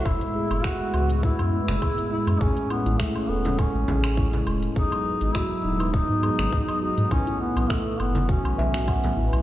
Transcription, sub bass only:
X:1
M:4/4
L:1/16
Q:"Swing 16ths" 1/4=102
K:F#dor
V:1 name="Sub bass" clef=bass
F,,, z2 F,,, z2 C,,3 F,, z F,,, z3 F,, | A,,, z2 A,,, z2 E,,,3 A,,, A,,,4 E,,, z | G,,, z2 G,,, z2 D,,,3 G,, z G,,, z3 G,, | B,,, z2 B,,, z2 F,,,3 B,,, B,,,4 A,,, B,,, |]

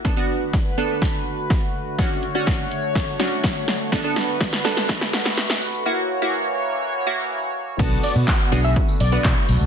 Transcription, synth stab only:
X:1
M:4/4
L:1/16
Q:1/4=124
K:Bm
V:1 name="Synth stab"
[B,DA] [B,DF]4 z [B,DA]6 z4 | [CDF]2 z [CDF]4- [CDF] z2 [CDF]4 z2 | [B,DA] [B,DA]4 z [B,DA]6 z4 | [^A,EF]2 z [A,EF]4- [A,EF] z2 [A,EF]4 z2 |
[B,DFA]4 z2 [B,DF^G]4 z [B,DFB]4 z |]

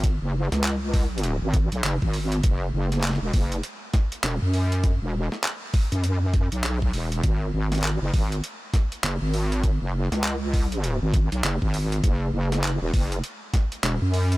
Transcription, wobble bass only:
X:1
M:4/4
L:1/16
Q:"Swing 16ths" 1/4=100
K:G#m
V:1 name="Wobble bass" clef=bass
G,,, F,,,2 C,,6 G,,,2 B,,, F,,, G,,,3 | F,,,2 F,,,3 E,,, F,,,2 z4 E,,, F,,3- | F,, E,,,2 z4 F,,4 B,,,3 E,,,2 | G,,,2 G,,,3 F,,, G,,,2 z4 F,,, G,,,3- |
G,,, F,,,2 C,,6 G,,,2 B,,, F,,, G,,,3 | F,,,2 F,,,3 E,,, F,,,2 z4 E,,, F,,3 |]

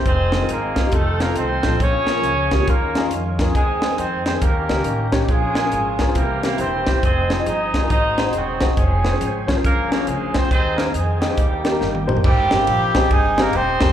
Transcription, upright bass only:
X:1
M:4/4
L:1/8
Q:"Swing" 1/4=138
K:Ab
V:1 name="Upright bass" clef=bass
F,,,2 A,,,2 F,,,2 C,, B,,, | B,,,2 D,,2 E,,2 F,,2 | E,,2 F,,2 E,, D,, =A,,,2 | B,,,2 A,,,2 C,,2 =E,,,2 |
F,,,2 G,,,2 A,,,2 _F,,,2 | F,,,2 A,,,2 G,,,2 =D,,2 | E,,2 F,,2 E,,2 G,,,2 | A,,, G,,, B,,,2 G,,,2 E,,, _F,,, |]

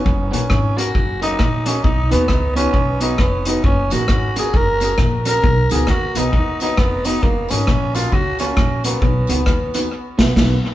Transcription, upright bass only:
X:1
M:4/4
L:1/8
Q:"Swing" 1/4=134
K:F#
V:1 name="Upright bass" clef=bass
F,,, A,,, G,,,2 F,,,2 A,,,2 | B,,, D,, C,,2 B,,,2 E,,,2 | F,,, A,,, G,,,2 F,,,2 A,,,2 | B,,, C,, D,, B,,, D,,2 E,,,2 |
F,,, G,,, A,,,2 C,,2 A,,,2 | B,,, C,, D,,2 z B,,, B,,, z |]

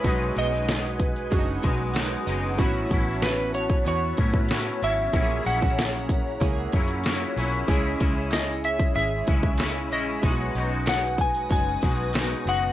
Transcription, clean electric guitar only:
X:1
M:4/4
L:1/16
Q:1/4=94
K:B
V:1 name="Clean electric guitar" clef=bass
[B,,F,G,D]2 [B,,F,G,D] [F,G,D]6- [F,G,D] [B,,F,G,D]2 [B,,F,G,D]2 [B,,F,G,D]2 | [=A,,F,CE]2 [A,,F,CE] [F,CE]6- [F,CE] [A,,F,CE]2 [A,,F,CE]2 [F,CE]2 | [A,,F,CE]2 [A,,F,CE] [F,CE]6- [F,CE] [A,,F,CE]2 [A,,F,CE]2 [A,,F,CE]2 | [C,G,CE]2 [C,G,CE] [G,CE]6- [G,CE] [C,G,CE]2 [C,G,CE]2 [C,G,CE]2 |
[B,,G,DF]2 [B,,G,DF] [G,DF]6- [G,DF] [B,,G,DF]2 [B,,G,DF]2 [B,,G,DF]2 |]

